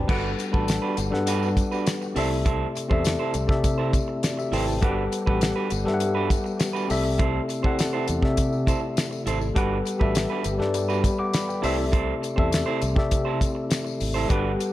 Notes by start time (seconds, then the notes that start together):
Already playing: C4 E4 F#4 G4 B4 C5 D5 G5 A5 B5
0.08 G1 G3 B3 D4 F#4 G4 A4 B4 F#5, kick, crash
0.38 muted clean electric guitar stroke, closed hi-hat, tambourine
0.51 A1 G3 D4 F#4 A4 B4 A5, kick
0.67 muted clean electric guitar stroke, snare, closed hi-hat, tambourine
0.82 D4 F#4 B4
0.97 G1, muted clean electric guitar stroke, closed hi-hat, tambourine
1.10 G2 G3 D4 A4 B4 F#5, muted clean electric guitar stroke, snare
1.27 D4 F#4 B4, closed hi-hat, tambourine
1.43 tambourine
1.57 muted clean electric guitar stroke, kick, closed hi-hat, tambourine
1.72 D4 F#4 B4, tambourine
1.86 snare, closed hi-hat, tambourine
2.02 muted clean electric guitar stroke, tambourine
2.15 C2 C3 A3 C4 E4 G4 A4 C5 D5 E5, open hi-hat, tambourine
2.30 muted clean electric guitar stroke
2.45 E4 A4 C5, kick, closed hi-hat
2.75 muted clean electric guitar stroke, closed hi-hat, tambourine
2.88 E2 C4 E4 G4 A4 C5 D5 E5, kick
3.04 muted clean electric guitar stroke, snare, closed hi-hat, tambourine
3.19 E4 A4 C5
3.34 C2, muted clean electric guitar stroke, closed hi-hat, tambourine
3.47 C3 C4 G4 A4 D5 E5, muted clean electric guitar stroke, kick, snare
3.64 muted clean electric guitar stroke, kick, closed hi-hat, tambourine
3.78 E4 A4 C5
3.93 muted clean electric guitar stroke, kick, closed hi-hat, tambourine
4.08 muted clean electric guitar stroke
4.23 F#4 D5, snare, closed hi-hat, tambourine
4.37 G4 E5, muted clean electric guitar stroke, tambourine
4.52 G#1 E4 A4 B4 C5 G5, open hi-hat, tambourine
4.67 C5 A5, muted clean electric guitar stroke, tambourine
4.81 G1 G3 B3 D4 F#4 G4 A4 B4 F#5, kick, closed hi-hat
5.12 muted clean electric guitar stroke, closed hi-hat, tambourine
5.26 A1 G3 D4 F#4 G4 A4 B4 F#5, kick
5.41 muted clean electric guitar stroke, snare, closed hi-hat, tambourine
5.56 D4 F#4 B4
5.70 G1, muted clean electric guitar stroke, closed hi-hat, tambourine
5.84 G2 G3 G4 A4 B4, muted clean electric guitar stroke, snare
5.88 E5
5.94 F#5
6.00 muted clean electric guitar stroke, closed hi-hat, tambourine
6.15 D4 F#4 B4
6.30 muted clean electric guitar stroke, kick, closed hi-hat, tambourine
6.44 muted clean electric guitar stroke, tambourine
6.59 muted clean electric guitar stroke, snare, closed hi-hat, tambourine
6.73 D4 F#4 B4, tambourine
6.88 C2 C3 A3 C4 E4 G4 A4 D5 E5, muted clean electric guitar stroke, open hi-hat, tambourine
7.04 muted clean electric guitar stroke
7.18 E4 A4 C5, kick, closed hi-hat
7.48 muted clean electric guitar stroke, closed hi-hat, tambourine
7.62 C4 E4 G4 A4 C5 D5 F#5, kick
7.78 muted clean electric guitar stroke, snare, closed hi-hat, tambourine
7.93 E4 A4 C5
8.07 E2, muted clean electric guitar stroke, closed hi-hat, tambourine
8.21 C3 C4 G4 A4 D5 E5, muted clean electric guitar stroke, kick, snare
8.37 muted clean electric guitar stroke, kick, closed hi-hat, tambourine
8.53 tambourine
8.67 E4 A4 C5, kick, closed hi-hat, tambourine
8.81 muted clean electric guitar stroke
8.97 snare, closed hi-hat, tambourine
9.11 muted clean electric guitar stroke, tambourine
9.26 G#1 E4 A4 C5, closed hi-hat, tambourine
9.40 muted clean electric guitar stroke, tambourine
9.54 G1 G3 B3 D4 F#4 G4 A4 B4 F#5, kick, closed hi-hat
9.85 muted clean electric guitar stroke, closed hi-hat, tambourine
9.98 A1 G3 D4 F#4 G4 A4 B4 E5, kick
10.15 muted clean electric guitar stroke, snare, closed hi-hat, tambourine
10.30 D4 F#4 B4
10.44 G1, muted clean electric guitar stroke, closed hi-hat, tambourine
10.58 G2 G3 G4 A4 B4 D5, muted clean electric guitar stroke, snare
10.74 muted clean electric guitar stroke, closed hi-hat, tambourine
10.89 D4 F#4 B4, tambourine
11.04 D5 B5, muted clean electric guitar stroke, kick, closed hi-hat, tambourine
11.19 F#5 D6, muted clean electric guitar stroke
11.34 D5 B5, snare, closed hi-hat, tambourine
11.48 B4 G5, muted clean electric guitar stroke, tambourine
11.62 C2 C3 A3 C4 E4 G4 A4 C5 D5 E5, open hi-hat, tambourine
11.78 muted clean electric guitar stroke
11.92 E4 A4 C5, kick, closed hi-hat
12.22 muted clean electric guitar stroke, closed hi-hat, tambourine
12.36 E2 C4 E4 G4 A4 C5 D5 E5, kick
12.52 muted clean electric guitar stroke, snare, closed hi-hat, tambourine
12.66 E4 A4 C5
12.81 C2, muted clean electric guitar stroke, closed hi-hat, tambourine
12.95 C3 C4 G4 A4 D5 E5, muted clean electric guitar stroke, kick, snare
13.11 muted clean electric guitar stroke, kick, closed hi-hat, tambourine
13.25 E4 A4 C5
13.40 muted clean electric guitar stroke, kick, closed hi-hat, tambourine
13.55 muted clean electric guitar stroke
13.70 muted clean electric guitar stroke, snare, closed hi-hat, tambourine
13.85 muted clean electric guitar stroke, tambourine
14.00 G#1, open hi-hat, tambourine
14.14 E4 A4 C5
14.28 G1 G3 B3 D4 F#4 G4 A4 B4 F#5, kick, closed hi-hat
14.59 muted clean electric guitar stroke, closed hi-hat, tambourine